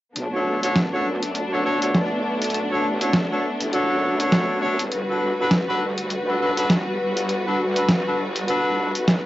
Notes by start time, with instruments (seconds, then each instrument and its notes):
0.16 wobble bass B1, string section A3 B3 D4, closed hi-hat
0.33 horn section D4 F#4 A4 C#5
0.63 horn section D4 F#4 A4 C#5, closed hi-hat
0.76 snare, closed hi-hat
0.93 horn section D4 F#4 A4 C#5
1.05 wobble bass F#2
1.23 closed hi-hat
1.35 closed hi-hat
1.52 horn section D4 F#4 A4 C#5
1.65 wobble bass D2, horn section D4 F#4 A4 C#5
1.82 horn section D4 F#4 A4 C#5, closed hi-hat
1.95 wobble bass B1, snare, closed hi-hat
2.24 wobble bass B1
2.42 closed hi-hat
2.44 closed hi-hat
2.50 closed hi-hat
2.54 closed hi-hat
2.71 horn section D4 F#4 A4 C#5
2.84 wobble bass A1
3.01 horn section D4 F#4 A4 C#5, closed hi-hat
3.13 snare, closed hi-hat
3.31 horn section D4 F#4 A4 C#5
3.60 wobble bass A1, closed hi-hat
3.73 horn section D4 F#4 A4 C#5, closed hi-hat
3.90 wobble bass F#2
4.20 horn section D4 F#4 A4 C#5, closed hi-hat
4.32 snare, closed hi-hat
4.62 horn section D4 F#4 A4 C#5
4.79 wobble bass A1, closed hi-hat
4.91 wobble bass G1, string section G3 F#4 B4, closed hi-hat
5.09 horn section D4 F#4 A4 B4
5.39 horn section D4 F#4 A4 B4
5.51 snare, closed hi-hat
5.68 horn section D4 F#4 A4 B4
5.80 wobble bass D2
5.98 closed hi-hat
6.10 closed hi-hat
6.28 horn section D4 F#4 A4 B4
6.40 wobble bass B1, horn section D4 F#4 A4 B4
6.57 horn section D4 F#4 A4 B4, closed hi-hat
6.70 wobble bass G1, snare, closed hi-hat
6.99 wobble bass G1
7.17 closed hi-hat
7.29 closed hi-hat
7.46 horn section D4 F#4 A4 B4
7.59 wobble bass D2
7.76 horn section D4 F#4 A4 B4, closed hi-hat
7.89 snare, closed hi-hat
8.06 wobble bass G1, horn section D4 F#4 A4 B4
8.36 closed hi-hat
8.48 horn section D4 F#4 A4 B4, closed hi-hat
8.95 wobble bass B1, closed hi-hat
9.08 snare, closed hi-hat